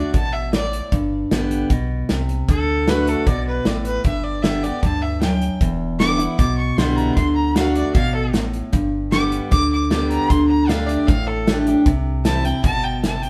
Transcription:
Already playing: steel-string acoustic guitar D3 A3 D4 F#4, fiddle D5
0.14 sub bass A1, steel-string acoustic guitar B2, fiddle A5, kick, closed hi-hat
0.33 fiddle E5
0.53 steel-string acoustic guitar A2, fiddle D5, snare, closed hi-hat
0.73 closed hi-hat
0.92 sub bass G1, steel-string acoustic guitar G2, kick, closed hi-hat
1.31 sub bass A1, steel-string acoustic guitar D3 G3 B3 G4, snare, closed hi-hat
1.51 closed hi-hat
1.70 sub bass B1, steel-string acoustic guitar B2, kick, closed hi-hat
2.09 sub bass C2, steel-string acoustic guitar C3, snare, closed hi-hat
2.29 closed hi-hat
2.48 sub bass D2, steel-string acoustic guitar D3, fiddle A4, kick, closed hi-hat
2.88 steel-string acoustic guitar D3 A3 D4 F#4, fiddle B4, snare, closed hi-hat
3.07 fiddle A4, closed hi-hat
3.27 sub bass B1, steel-string acoustic guitar B2, fiddle D5, kick, closed hi-hat
3.47 fiddle B4
3.65 sub bass A1, steel-string acoustic guitar A2, fiddle D5, snare, closed hi-hat
3.85 fiddle B4, closed hi-hat
4.04 sub bass G1, steel-string acoustic guitar G2, fiddle E5, kick, closed hi-hat
4.23 fiddle D5
4.42 steel-string acoustic guitar D3 G3 B3 G4, fiddle E5, snare, closed hi-hat
4.63 steel-string acoustic guitar B3 G4, fiddle D5, closed hi-hat
4.83 sub bass D2, steel-string acoustic guitar G2, fiddle A5, kick, closed hi-hat
5.02 fiddle E5
5.22 steel-string acoustic guitar F#2, fiddle G5, snare, closed hi-hat
5.42 closed hi-hat
5.61 sub bass E1, steel-string acoustic guitar E2, kick, closed hi-hat
5.99 steel-string acoustic guitar D3 G3 B3 E4, fiddle D6, snare, closed hi-hat
6.19 steel-string acoustic guitar B3 E4, closed hi-hat
6.38 sub bass B1, steel-string acoustic guitar B2, fiddle D6, kick, closed hi-hat
6.57 fiddle C#6
6.77 sub bass C2, steel-string acoustic guitar D3 G3 B3 E4, fiddle C6, snare, closed hi-hat
6.96 fiddle A#5, closed hi-hat
7.14 sub bass D2, steel-string acoustic guitar D3, fiddle C6, kick, closed hi-hat
7.35 fiddle A#5
7.56 steel-string acoustic guitar D3 A3 D4 F#4, fiddle F5, snare, closed hi-hat
7.75 fiddle D5, closed hi-hat
7.95 sub bass A1, steel-string acoustic guitar B2, fiddle F5, kick, closed hi-hat
8.15 fiddle A4
8.33 steel-string acoustic guitar A2, snare, closed hi-hat
8.53 closed hi-hat
8.73 sub bass G1, steel-string acoustic guitar G2, kick, closed hi-hat
9.11 steel-string acoustic guitar D3 G3 B3 G4, fiddle D6, snare, closed hi-hat
9.32 closed hi-hat
9.51 sub bass D2, steel-string acoustic guitar D3, fiddle D6, kick, closed hi-hat
9.72 fiddle D6
9.90 steel-string acoustic guitar D3 G3 B3 G4, fiddle D6, snare, closed hi-hat
10.10 fiddle A#5, closed hi-hat
10.29 sub bass D2, steel-string acoustic guitar D3, fiddle C6, kick, closed hi-hat
10.48 fiddle A#5
10.68 steel-string acoustic guitar D3 A3 D4 G4, fiddle F5, snare, closed hi-hat
10.86 fiddle D5, closed hi-hat
11.07 sub bass A1, steel-string acoustic guitar A2, fiddle F5, kick, closed hi-hat
11.27 fiddle A4
11.47 steel-string acoustic guitar D3 A3 D4 G4, snare, closed hi-hat
11.67 steel-string acoustic guitar D4 G4, closed hi-hat
11.86 sub bass C2, steel-string acoustic guitar C3, kick, closed hi-hat
12.24 steel-string acoustic guitar E3 G3 C4 E4, fiddle A5, snare, closed hi-hat
12.44 steel-string acoustic guitar C4 E4, fiddle G5, closed hi-hat
12.64 sub bass G1, steel-string acoustic guitar B2, fiddle A5, kick, closed hi-hat
12.84 fiddle G5
13.04 steel-string acoustic guitar C3, fiddle A5, snare, closed hi-hat
13.22 fiddle G5, closed hi-hat

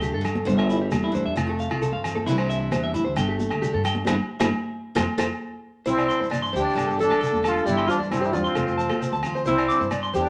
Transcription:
Already playing: upright bass D2, steel-string acoustic guitar G2 A3
0.02 steel-string acoustic guitar D4, clean electric guitar G4, shekere
0.14 upright bass G2, clean electric guitar A4
0.21 steel-string acoustic guitar D3, muted clean electric guitar stroke, low conga, low agogo
0.25 shekere
0.35 high conga
0.45 upright bass G1, steel-string acoustic guitar G2 G3, clean electric guitar C5, shekere
0.58 clean electric guitar E5, low agogo
0.69 clean electric guitar E4, shekere
0.82 clean electric guitar G4
0.91 upright bass E2, steel-string acoustic guitar D4, high conga, low agogo, shekere
1.04 clean electric guitar E4
1.12 upright bass A2, steel-string acoustic guitar E3, clean electric guitar C5, low conga, shekere
1.26 upright bass E2, clean electric guitar E5
1.35 upright bass F1, steel-string acoustic guitar F2, clean electric guitar F4, muted steel-string acoustic guitar stroke, low agogo, shekere
1.46 steel-string acoustic guitar A3, clean electric guitar A4
1.59 clean electric guitar F5, shekere
1.69 upright bass C2, clean electric guitar F4, low agogo
1.82 steel-string acoustic guitar C4, clean electric guitar A4, shekere
1.92 upright bass G2, clean electric guitar F5
2.04 steel-string acoustic guitar F3, low conga, low agogo, shekere
2.15 clean electric guitar A4, high conga
2.26 upright bass C2, steel-string acoustic guitar C3 E3 G3 D4, clean electric guitar E4, shekere
2.31 steel-string acoustic guitar E4
2.38 clean electric guitar C5, low agogo
2.50 clean electric guitar E5, shekere
2.61 muted clean electric guitar stroke
2.71 upright bass E2, steel-string acoustic guitar B2, clean electric guitar C5, high conga, low agogo, shekere
2.84 clean electric guitar E5
2.94 upright bass A2, clean electric guitar E4, muted steel-string acoustic guitar stroke, low conga, shekere
3.05 upright bass D2, clean electric guitar C5
3.16 upright bass G1, steel-string acoustic guitar G2 A3, clean electric guitar G5, low agogo, shekere
3.28 clean electric guitar G4
3.39 high conga, shekere
3.51 upright bass D2, muted clean electric guitar stroke, low agogo
3.62 steel-string acoustic guitar D4, clean electric guitar G4, shekere
3.74 upright bass G2, clean electric guitar A4
3.84 clean electric guitar G5, muted steel-string acoustic guitar stroke, low conga, low agogo, shekere
3.95 high conga
4.05 upright bass G1, steel-string acoustic guitar D3 E3 G3, clean electric guitar E4 G4 C5, high conga, low agogo, shekere
4.40 upright bass G1, steel-string acoustic guitar D3 E3 G3, clean electric guitar E4 G4 C5, high conga, low agogo, shekere
4.95 upright bass F2, steel-string acoustic guitar C3 F3 A3, clean electric guitar F4 A4 C5, high conga, low agogo, shekere
5.18 upright bass F2, steel-string acoustic guitar C3 F3 A3, clean electric guitar F4 A4 C5, high conga, low agogo, shekere
5.86 upright bass C2, steel-string acoustic guitar C3, muted trumpet C4, alto saxophone E4, clean electric guitar C5, shekere
5.97 clean electric guitar D5, low agogo, shekere
6.08 steel-string acoustic guitar D4, clean electric guitar C6, shekere
6.20 upright bass G2, clean electric guitar C5, shekere
6.30 steel-string acoustic guitar E3, clean electric guitar D5, high conga, low agogo, shekere
6.42 clean electric guitar C6, shekere
6.53 upright bass D2, steel-string acoustic guitar E4, alto saxophone G4, clean electric guitar C5, low conga, shekere
6.58 muted trumpet D4
6.65 clean electric guitar D5, shekere
6.74 upright bass G1, steel-string acoustic guitar G2 D3 A3 D4, clean electric guitar A5, low agogo
6.78 shekere
6.87 upright bass G1, clean electric guitar A4, shekere
6.99 steel-string acoustic guitar D4, muted trumpet D4, alto saxophone A4, low conga, shekere
7.10 clean electric guitar A5, high conga, low agogo, shekere
7.21 steel-string acoustic guitar D3, clean electric guitar A4, shekere
7.33 upright bass E1, high conga, shekere
7.43 muted trumpet F4, steel-string acoustic guitar G4, alto saxophone A4, clean electric guitar A5, low conga, low agogo, shekere
7.57 shekere
7.66 upright bass G1, steel-string acoustic guitar G2 E3 G3 D4, muted trumpet E4, alto saxophone G4, clean electric guitar D5, shekere
7.77 clean electric guitar C6, low agogo
7.88 muted trumpet D4, steel-string acoustic guitar D4, alto saxophone F4, clean electric guitar C5, shekere
7.99 upright bass G2, clean electric guitar D5, shekere
8.11 steel-string acoustic guitar A2, muted trumpet C4, alto saxophone E4, high conga, low agogo, shekere
8.21 alto saxophone G4, clean electric guitar C5, shekere
8.25 muted trumpet E4
8.32 upright bass E2, steel-string acoustic guitar G2, muted trumpet C4, alto saxophone F4, clean electric guitar D5, low conga, shekere
8.44 clean electric guitar C6, shekere
8.55 upright bass F1, steel-string acoustic guitar F2, clean electric guitar A4, low agogo, shekere
8.67 upright bass F1, clean electric guitar C5, shekere
8.78 steel-string acoustic guitar C4, clean electric guitar A5, low conga, shekere
8.90 clean electric guitar A4, high conga, low agogo, shekere
9.01 steel-string acoustic guitar F3, clean electric guitar C5, shekere
9.12 upright bass D2, clean electric guitar A5, high conga, shekere
9.23 steel-string acoustic guitar F4, low conga, low agogo, shekere
9.35 clean electric guitar C5, shekere
9.45 upright bass C2, steel-string acoustic guitar C3, muted trumpet C4, alto saxophone E4, clean electric guitar C5, shekere
9.57 clean electric guitar D5, low agogo, shekere
9.68 steel-string acoustic guitar D4, clean electric guitar D6, shekere
9.80 upright bass G2, clean electric guitar C5, shekere
9.91 steel-string acoustic guitar B2, clean electric guitar D5, high conga, low agogo, shekere
10.03 clean electric guitar C6, shekere
10.13 upright bass E2, steel-string acoustic guitar A2, muted trumpet D4, alto saxophone G4, clean electric guitar C5, low conga, shekere
10.25 clean electric guitar D5, shekere

